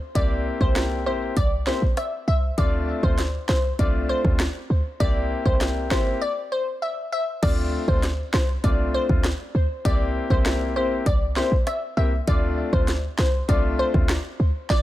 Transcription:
0.15 C2 A#3 C4 E4 G4 D5, kick, closed hi-hat
0.60 C2 A#3 C4 E4 G4 C5, kick
0.76 snare, closed hi-hat
1.06 A#1 A#3 C4 E4 G4 C5
1.37 C2 D5, kick, closed hi-hat
1.67 A#3 C4 E4 G4 C5, snare
1.82 A#1
1.97 E5, cross-stick, closed hi-hat
2.28 C2 E5
2.58 D2 A3 C4 D4 F4 D5, kick, closed hi-hat
3.03 D2 A3 C4 D4 F4 C5, kick
3.18 snare, closed hi-hat
3.49 C2 C5, snare
3.79 C2 A3 C4 D4 F4 D5, kick, closed hi-hat
4.09 C5
4.24 D2 A3 C4 D4 F4, kick
4.40 cross-stick, snare, closed hi-hat
4.70 D2
5.00 C2 A#3 C4 E4 G4 D5, kick, closed hi-hat
5.45 C2 C4 E4 G4 C5, kick
5.61 snare, closed hi-hat
5.91 A#1 A#3 C4 E4 G4 C5, kick, snare
6.22 D5
6.52 C5
6.82 E5
7.12 E5
7.42 D2 A3 C4 D4 F4 D5, kick, closed hi-hat, crash
7.88 D2 A3 C4 D4 F4 C5, kick
8.03 snare, closed hi-hat
8.34 C2 C5, snare
8.63 C2 A3 C4 D4 F4 D5, kick, closed hi-hat
8.94 C5
9.09 D2 A3 C4 D4 F4, kick
9.24 cross-stick, snare, closed hi-hat
9.55 D2
9.85 C2 A#3 C4 E4 G4 D5, kick, closed hi-hat
10.30 C2 A#3 C4 E4 G4 C5, kick
10.46 snare, closed hi-hat
10.76 A#1 A#3 C4 E4 G4 C5
11.06 C2 D5, kick, closed hi-hat
11.36 A#3 C4 E4 G4 C5, snare
11.52 A#1
11.67 E5, cross-stick, closed hi-hat
11.97 C2 A#3 C4 E4 G4 E5
12.27 D2 A3 C4 D4 F4 D5, kick, closed hi-hat
12.73 D2 A3 C4 D4 F4 C5, kick
12.88 snare, closed hi-hat
13.19 C2 C5, snare
13.48 C2 A3 C4 D4 F4 D5, kick, closed hi-hat
13.79 C5
13.94 D2 A3 C4 D4 F4, kick
14.09 cross-stick, snare, closed hi-hat
14.40 D2
14.70 D5, kick, snare

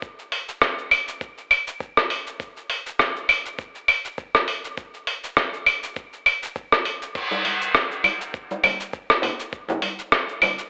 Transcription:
0.02 kick, cabasa
0.19 cabasa
0.32 open hi-hat
0.49 cabasa
0.62 kick, cross-stick, cabasa
0.79 cabasa
0.91 open hi-hat, claves
1.08 cabasa
1.21 kick, cabasa
1.38 cabasa
1.51 open hi-hat, claves
1.67 cabasa
1.80 kick, cabasa
1.97 cross-stick, cabasa
2.10 open hi-hat
2.27 cabasa
2.40 kick, cabasa
2.57 cabasa
2.70 open hi-hat
2.87 cabasa
2.99 kick, cross-stick, cabasa
3.16 cabasa
3.29 open hi-hat, claves
3.46 cabasa
3.59 kick, cabasa
3.75 cabasa
3.88 open hi-hat, claves
4.05 cabasa
4.18 kick, cabasa
4.35 cross-stick, cabasa
4.48 open hi-hat
4.64 cabasa
4.77 kick, cabasa
4.94 cabasa
5.07 open hi-hat
5.24 cabasa
5.37 kick, cross-stick, cabasa
5.53 cabasa
5.66 open hi-hat, claves
5.83 cabasa
5.96 kick, cabasa
6.13 cabasa
6.26 open hi-hat, claves
6.43 cabasa
6.56 kick, cabasa
6.72 cross-stick, cabasa
6.85 open hi-hat
7.02 cabasa
7.15 kick, crash, cabasa
7.31 muted conga, high conga, cabasa
7.45 open hi-hat, high conga
7.61 cabasa
7.75 kick, cross-stick, cabasa
7.91 cabasa
8.04 open hi-hat, muted conga, high conga, claves
8.21 cabasa
8.34 kick, cabasa
8.51 muted conga, high conga, cabasa
8.63 open hi-hat, high conga, low conga, claves
8.80 cabasa
8.93 kick, cabasa
9.10 cross-stick, cabasa
9.22 open hi-hat, low conga
9.40 cabasa
9.53 kick, cabasa
9.68 muted conga, high conga, low conga, cabasa
9.82 open hi-hat, high conga
9.99 cabasa
10.12 kick, cross-stick, cabasa
10.29 cabasa
10.42 open hi-hat, muted conga, high conga, low conga, claves
10.59 cabasa

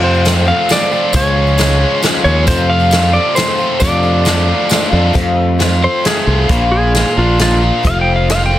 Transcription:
Already playing: F2 C3 F3 A3 C4 F4
0.02 F3 A3 C4 F4 C5
0.14 tambourine
0.24 F3 A3 C4 F4, snare, closed hi-hat, tambourine
0.47 F2 C3 F3 A3 C4 F4 F5
0.69 F3 A3 C4 D5, snare, closed hi-hat, tambourine
0.73 F4
0.91 F3 A3 C4 F4, tambourine
1.13 C#2 C#3 F3 G#3 C#4 F4 C#5, kick, closed hi-hat, tambourine
1.36 G#3 C#4 F4
1.47 tambourine
1.58 F3 G#3 C#4 F4, snare, closed hi-hat, tambourine
1.81 C#3 F3 G#3 C#4 F4
2.02 F3 G#3 C#4 F4, snare, closed hi-hat, tambourine
2.24 D#2 G#3 C#4 F4 C#5, tambourine
2.47 F2 C3 F3 A3 C4 F4 C5, kick, closed hi-hat, tambourine
2.69 F3 A3 C4 F4 F5
2.80 tambourine
2.91 F3 A3 C4 F4, snare, closed hi-hat, tambourine
3.13 F2 C3 F3 A3 C4 F4 D5
3.35 F3 A3 C4 F4 C5, snare, closed hi-hat, tambourine
3.58 F3 A3 C4 F4, tambourine
3.80 F2 C3 F3 A3 D4 F4 D5, kick, closed hi-hat, tambourine
4.03 A3 D4 F4, tambourine
4.25 F3 A3 D4 F4, snare, closed hi-hat, tambourine
4.47 F3 A3 D4 F4
4.69 F3 A3 D4 F4, snare, closed hi-hat, tambourine
4.90 F2 F3 A3 D4 F4
5.13 F2 C3 F3 A3 C4 F4, kick, closed hi-hat
5.58 F3 A3 C4 F4, snare, closed hi-hat
5.81 F3 A3 C4 F4 C5
6.04 F3 A3 C4 F4 G#4, snare, closed hi-hat
6.27 C2 F4
6.49 A#1 A#2 F3 A#3 D4 F4, kick, closed hi-hat
6.72 G#4
6.94 F3 A#3 D4 F4, snare, closed hi-hat
7.17 A#1 A#3 D4 F4
7.38 F3 A#3 D4 F4, snare, closed hi-hat
7.62 F4
7.83 F1 F2 C3 F3 A3 C4 F4, kick, closed hi-hat
7.87 F5
8.01 G5
8.16 F5
8.28 F3 A3 C4 F4 F5, snare, closed hi-hat
8.46 G5
8.51 F3 A3 C4 F4

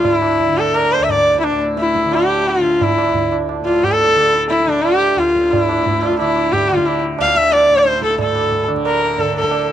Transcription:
Already playing: D2 A2 D3
0.05 E4, tabla tin, tabla ge
0.22 tabla na
0.40 tabla tin, tabla ge
0.46 D3
0.57 A4, tabla na
0.75 A#4, tabla na
0.91 C5, tabla na
0.98 D2
1.04 E5
1.09 D5, tabla tin, tabla ge
1.26 tabla na
1.35 tabla ke
1.40 E4, tabla na
1.44 D4
1.51 A2
1.60 tabla te
1.77 E4, tabla te
1.86 tabla te
1.95 tabla ke
2.03 D3, tabla te
2.12 G4, tabla na
2.29 tabla na
2.46 F4, tabla te
2.55 D3, tabla te
2.64 tabla ke
2.73 tabla te
2.81 E4, tabla tin, tabla ge
2.98 tabla na
3.10 D2
3.15 tabla tin, tabla ge
3.32 tabla na
3.49 tabla na
3.62 A2 F4
3.67 tabla na
3.83 G4, tabla tin, tabla ge
3.92 A4
4.00 tabla na
4.14 D3, tabla na
4.35 tabla te
4.50 E4, tabla te
4.60 tabla te
4.65 D3, tabla ke
4.71 D4
4.77 tabla te
4.83 G4, tabla na
5.02 tabla na
5.15 D2 F4, tabla te
5.27 tabla te
5.36 tabla ke
5.44 tabla te
5.51 E4, tabla tin, tabla ge
5.69 A2, tabla na
5.86 tabla tin, tabla ge
6.02 F4, tabla na
6.11 tabla ke
6.19 D3 E4, tabla na
6.36 tabla na
6.52 G4, tabla tin, tabla ge
6.69 D3 F4, tabla na
6.78 tabla ke
6.86 E4, tabla na
7.02 tabla te
7.19 D2 F5, tabla na
7.36 E5, tabla ke
7.52 D5, tabla na
7.69 A2, tabla na
7.78 C5
7.86 tabla te
7.93 tabla te
8.02 A4, tabla ke
8.10 tabla te
8.18 A2 A4, tabla tin, tabla ge
8.35 tabla na
8.52 tabla tin, tabla ge
8.68 D3, tabla na
8.76 tabla ke
8.85 A#4, tabla na
9.02 tabla na
9.18 D3 A4, tabla tin, tabla ge
9.35 A4, tabla na
9.43 tabla ke
9.51 tabla na
9.68 tabla te

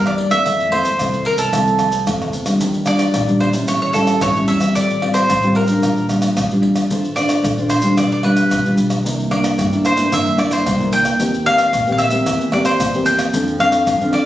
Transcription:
Already playing: E2 G2 G3 A#3 E4
0.06 D5, pandeiro, tamborim, maracas
0.18 pandeiro
0.30 A3 C4 E4 E5, pandeiro, tamborim, maracas, surdo
0.45 F2 F3, pandeiro, tamborim, maracas, surdo
0.60 pandeiro, maracas
0.72 A3 C4 E4 C5, pandeiro, tamborim
0.83 F2, pandeiro, maracas, surdo
0.98 C2 C3 A3 C4 E4, pandeiro, tamborim, maracas, surdo
1.14 pandeiro, maracas
1.25 A#4, pandeiro
1.37 C2 A4, pandeiro, maracas, surdo
1.52 C2 F3 A3 C4 E4, pandeiro, tamborim, maracas, surdo
1.67 pandeiro, maracas
1.79 pandeiro, tamborim, maracas
1.92 pandeiro, maracas, surdo
2.06 F2 C3 A3 C4 E4, pandeiro, tamborim, maracas, surdo
2.22 pandeiro, tamborim, maracas
2.32 E2, pandeiro, maracas
2.45 G3 D4 F4, pandeiro, tamborim, maracas, surdo
2.60 D#2 D#3, pandeiro, maracas, surdo
2.74 pandeiro, maracas
2.86 G3 D4 F4 D5, pandeiro, tamborim, maracas
2.99 pandeiro, tamborim, maracas
3.13 A#1 A#2, pandeiro, tamborim, maracas, surdo
3.28 G3 D4 F4, pandeiro, maracas
3.40 C5, pandeiro, tamborim
3.53 G3 C#4 E4, pandeiro, maracas
3.67 A1 A2 C#5, pandeiro, tamborim, maracas, surdo
3.82 C#5, pandeiro, maracas
3.93 G3 C#4 E4 A4, pandeiro, tamborim, maracas, surdo
4.07 pandeiro, tamborim, maracas
4.21 A1 E3 C#5, pandeiro, tamborim, maracas, surdo
4.35 G3 C#4 E4, pandeiro, maracas
4.48 E2 E5, pandeiro
4.60 G3 C4 F4, pandeiro, tamborim, maracas
4.75 A1 A2 D5, pandeiro, maracas, surdo
4.90 pandeiro, maracas
5.02 G3 C4 F4, pandeiro, tamborim
5.14 C5, pandeiro, tamborim, maracas
5.29 A1, pandeiro, tamborim, maracas, surdo
5.43 G3 C4 F4, pandeiro, maracas
5.55 A#4, pandeiro, tamborim
5.68 G3 D4 F4, pandeiro, maracas
5.82 A#1 A#2, pandeiro, tamborim, maracas, surdo
5.97 pandeiro, maracas
6.09 G3 D4 F4, pandeiro, tamborim, maracas, surdo
6.22 pandeiro, tamborim, maracas
6.36 A#1 A#2, pandeiro, tamborim, maracas, surdo
6.51 G3 D4 F4, pandeiro, maracas
6.62 E2, pandeiro
6.76 pandeiro, tamborim, maracas
6.89 A1 A3 D4 F4 C5, pandeiro, maracas, surdo
7.05 pandeiro, maracas
7.16 D4 F4 C5 D5, pandeiro, tamborim, maracas
7.29 pandeiro, tamborim, maracas
7.43 A#1 A3, pandeiro, tamborim, maracas, surdo
7.58 D4 F4 C5, pandeiro, maracas
7.70 C5, pandeiro, tamborim, maracas
7.82 G3 D4 F4, pandeiro, maracas
7.97 B1 B2 D5, pandeiro, tamborim, maracas, surdo
8.12 D5, pandeiro, maracas
8.23 G3 D4 F4 B4, pandeiro, tamborim
8.36 pandeiro, tamborim, maracas
8.51 B1 B2, pandeiro, tamborim, maracas, surdo
8.65 G3 D4 F4, pandeiro, maracas
8.77 B1, pandeiro, maracas
8.90 pandeiro, tamborim, maracas
9.04 C2 C3 A#3 D4 E4, pandeiro, maracas, surdo
9.20 pandeiro, maracas
9.30 A#3 D4 E4 D5, pandeiro, tamborim
9.44 pandeiro, tamborim, maracas
9.58 G2 G3, pandeiro, tamborim, maracas, surdo
9.72 A#3 D4 E4, pandeiro, maracas
9.85 C5, pandeiro, tamborim, maracas
9.97 A#3 D4 E4, pandeiro, maracas
10.12 G2 C3 A#3 D4 E4 E5, pandeiro, tamborim, maracas, surdo
10.27 pandeiro, maracas
10.37 A#3 D4 E4 D5, pandeiro, tamborim, maracas, surdo
10.51 C5, pandeiro, tamborim, maracas
10.65 C2 G3, pandeiro, tamborim, maracas, surdo
10.79 A#3 D4 E4, pandeiro, maracas
10.91 C2 G5, pandeiro, maracas
11.05 pandeiro, tamborim, maracas
11.19 D#2 D#3 A#3 C4 G4, pandeiro, maracas, surdo
11.34 pandeiro, maracas
11.44 A#3 C4 G4 F5, pandeiro, tamborim
11.58 pandeiro, tamborim, maracas
11.72 A#1 A#2, pandeiro, tamborim, maracas, surdo
11.87 A#3 C4 G4, pandeiro, maracas
11.92 F5
11.98 E5, pandeiro, tamborim, maracas
12.11 A#3 C4 G4, pandeiro, maracas
12.26 E2 E3, pandeiro, tamborim, maracas, surdo
12.41 pandeiro, maracas
12.52 A#3 C4 G4 D5, pandeiro, tamborim, surdo
12.65 C5, pandeiro, tamborim, maracas
12.79 E2 E3, pandeiro, tamborim, maracas, surdo
12.94 A#3 C4 G4, pandeiro, maracas
13.05 E2 G5, pandeiro, maracas
13.19 pandeiro, tamborim, maracas
13.33 F2 F3 C4 D4 A4, pandeiro, maracas, surdo
13.48 pandeiro, maracas
13.59 C4 D4 A4 F5, pandeiro, tamborim
13.72 pandeiro, tamborim, maracas
13.87 F#2 F3, pandeiro, tamborim, maracas, surdo
14.01 C4 D4 A4, pandeiro, maracas
14.13 D5, pandeiro, tamborim

